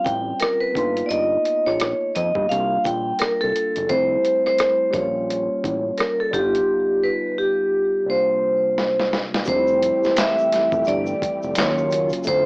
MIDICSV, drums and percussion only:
0, 0, Header, 1, 2, 480
1, 0, Start_track
1, 0, Key_signature, -1, "major"
1, 0, Tempo, 697674
1, 758, Time_signature, 4, 2, 24, 8
1, 8570, End_track
2, 0, Start_track
2, 0, Title_t, "Drums"
2, 41, Note_on_c, 9, 36, 82
2, 46, Note_on_c, 9, 42, 68
2, 110, Note_off_c, 9, 36, 0
2, 115, Note_off_c, 9, 42, 0
2, 273, Note_on_c, 9, 42, 67
2, 293, Note_on_c, 9, 37, 97
2, 342, Note_off_c, 9, 42, 0
2, 362, Note_off_c, 9, 37, 0
2, 519, Note_on_c, 9, 36, 89
2, 527, Note_on_c, 9, 42, 65
2, 588, Note_off_c, 9, 36, 0
2, 596, Note_off_c, 9, 42, 0
2, 666, Note_on_c, 9, 42, 38
2, 735, Note_off_c, 9, 42, 0
2, 761, Note_on_c, 9, 42, 59
2, 830, Note_off_c, 9, 42, 0
2, 999, Note_on_c, 9, 42, 52
2, 1068, Note_off_c, 9, 42, 0
2, 1155, Note_on_c, 9, 37, 32
2, 1224, Note_off_c, 9, 37, 0
2, 1237, Note_on_c, 9, 42, 81
2, 1248, Note_on_c, 9, 37, 96
2, 1306, Note_off_c, 9, 42, 0
2, 1317, Note_off_c, 9, 37, 0
2, 1482, Note_on_c, 9, 42, 65
2, 1551, Note_off_c, 9, 42, 0
2, 1618, Note_on_c, 9, 36, 89
2, 1686, Note_off_c, 9, 36, 0
2, 1729, Note_on_c, 9, 42, 72
2, 1798, Note_off_c, 9, 42, 0
2, 1962, Note_on_c, 9, 36, 75
2, 1969, Note_on_c, 9, 42, 66
2, 2031, Note_off_c, 9, 36, 0
2, 2038, Note_off_c, 9, 42, 0
2, 2192, Note_on_c, 9, 42, 65
2, 2211, Note_on_c, 9, 37, 114
2, 2261, Note_off_c, 9, 42, 0
2, 2280, Note_off_c, 9, 37, 0
2, 2446, Note_on_c, 9, 42, 63
2, 2515, Note_off_c, 9, 42, 0
2, 2585, Note_on_c, 9, 42, 44
2, 2654, Note_off_c, 9, 42, 0
2, 2678, Note_on_c, 9, 42, 57
2, 2681, Note_on_c, 9, 36, 87
2, 2747, Note_off_c, 9, 42, 0
2, 2750, Note_off_c, 9, 36, 0
2, 2922, Note_on_c, 9, 42, 49
2, 2990, Note_off_c, 9, 42, 0
2, 3074, Note_on_c, 9, 37, 29
2, 3142, Note_off_c, 9, 37, 0
2, 3154, Note_on_c, 9, 42, 76
2, 3165, Note_on_c, 9, 37, 108
2, 3223, Note_off_c, 9, 42, 0
2, 3234, Note_off_c, 9, 37, 0
2, 3396, Note_on_c, 9, 36, 97
2, 3398, Note_on_c, 9, 42, 61
2, 3409, Note_on_c, 9, 37, 31
2, 3465, Note_off_c, 9, 36, 0
2, 3467, Note_off_c, 9, 42, 0
2, 3477, Note_off_c, 9, 37, 0
2, 3648, Note_on_c, 9, 42, 67
2, 3717, Note_off_c, 9, 42, 0
2, 3880, Note_on_c, 9, 36, 79
2, 3887, Note_on_c, 9, 42, 66
2, 3949, Note_off_c, 9, 36, 0
2, 3956, Note_off_c, 9, 42, 0
2, 4111, Note_on_c, 9, 42, 71
2, 4131, Note_on_c, 9, 37, 107
2, 4180, Note_off_c, 9, 42, 0
2, 4200, Note_off_c, 9, 37, 0
2, 4356, Note_on_c, 9, 36, 92
2, 4362, Note_on_c, 9, 42, 68
2, 4425, Note_off_c, 9, 36, 0
2, 4431, Note_off_c, 9, 42, 0
2, 4505, Note_on_c, 9, 42, 46
2, 4574, Note_off_c, 9, 42, 0
2, 6041, Note_on_c, 9, 38, 55
2, 6110, Note_off_c, 9, 38, 0
2, 6189, Note_on_c, 9, 38, 52
2, 6258, Note_off_c, 9, 38, 0
2, 6282, Note_on_c, 9, 38, 78
2, 6351, Note_off_c, 9, 38, 0
2, 6428, Note_on_c, 9, 38, 88
2, 6497, Note_off_c, 9, 38, 0
2, 6500, Note_on_c, 9, 82, 76
2, 6518, Note_on_c, 9, 42, 58
2, 6519, Note_on_c, 9, 36, 100
2, 6569, Note_off_c, 9, 82, 0
2, 6587, Note_off_c, 9, 42, 0
2, 6588, Note_off_c, 9, 36, 0
2, 6654, Note_on_c, 9, 82, 42
2, 6723, Note_off_c, 9, 82, 0
2, 6760, Note_on_c, 9, 42, 60
2, 6828, Note_off_c, 9, 42, 0
2, 6908, Note_on_c, 9, 82, 48
2, 6914, Note_on_c, 9, 38, 33
2, 6976, Note_off_c, 9, 82, 0
2, 6983, Note_off_c, 9, 38, 0
2, 6994, Note_on_c, 9, 42, 87
2, 6997, Note_on_c, 9, 26, 62
2, 6997, Note_on_c, 9, 82, 68
2, 7006, Note_on_c, 9, 38, 110
2, 7013, Note_on_c, 9, 39, 96
2, 7063, Note_off_c, 9, 42, 0
2, 7066, Note_off_c, 9, 26, 0
2, 7066, Note_off_c, 9, 82, 0
2, 7075, Note_off_c, 9, 38, 0
2, 7082, Note_off_c, 9, 39, 0
2, 7144, Note_on_c, 9, 82, 46
2, 7213, Note_off_c, 9, 82, 0
2, 7241, Note_on_c, 9, 42, 70
2, 7252, Note_on_c, 9, 38, 36
2, 7310, Note_off_c, 9, 42, 0
2, 7320, Note_off_c, 9, 38, 0
2, 7374, Note_on_c, 9, 82, 44
2, 7377, Note_on_c, 9, 36, 95
2, 7443, Note_off_c, 9, 82, 0
2, 7445, Note_off_c, 9, 36, 0
2, 7464, Note_on_c, 9, 82, 62
2, 7487, Note_on_c, 9, 42, 71
2, 7532, Note_off_c, 9, 82, 0
2, 7555, Note_off_c, 9, 42, 0
2, 7613, Note_on_c, 9, 82, 45
2, 7682, Note_off_c, 9, 82, 0
2, 7721, Note_on_c, 9, 36, 86
2, 7727, Note_on_c, 9, 42, 78
2, 7790, Note_off_c, 9, 36, 0
2, 7796, Note_off_c, 9, 42, 0
2, 7863, Note_on_c, 9, 82, 44
2, 7932, Note_off_c, 9, 82, 0
2, 7949, Note_on_c, 9, 26, 71
2, 7949, Note_on_c, 9, 82, 73
2, 7951, Note_on_c, 9, 42, 85
2, 7971, Note_on_c, 9, 38, 127
2, 7979, Note_on_c, 9, 39, 100
2, 8018, Note_off_c, 9, 26, 0
2, 8018, Note_off_c, 9, 82, 0
2, 8020, Note_off_c, 9, 42, 0
2, 8040, Note_off_c, 9, 38, 0
2, 8048, Note_off_c, 9, 39, 0
2, 8106, Note_on_c, 9, 82, 48
2, 8175, Note_off_c, 9, 82, 0
2, 8192, Note_on_c, 9, 82, 46
2, 8204, Note_on_c, 9, 42, 76
2, 8260, Note_off_c, 9, 82, 0
2, 8273, Note_off_c, 9, 42, 0
2, 8323, Note_on_c, 9, 82, 39
2, 8346, Note_on_c, 9, 42, 50
2, 8392, Note_off_c, 9, 82, 0
2, 8415, Note_off_c, 9, 42, 0
2, 8419, Note_on_c, 9, 82, 68
2, 8443, Note_on_c, 9, 42, 71
2, 8444, Note_on_c, 9, 36, 104
2, 8487, Note_off_c, 9, 82, 0
2, 8512, Note_off_c, 9, 42, 0
2, 8513, Note_off_c, 9, 36, 0
2, 8570, End_track
0, 0, End_of_file